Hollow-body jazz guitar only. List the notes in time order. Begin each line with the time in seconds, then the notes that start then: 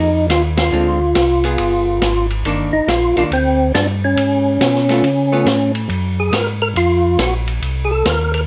0.72 D3 G#3 C4 F4
1.45 B3 F4 G#4
2.46 D#3 A#3 D4
3.17 D#3 A#3 D4
4.90 A3 B3 F4
5.32 A3 B3 F4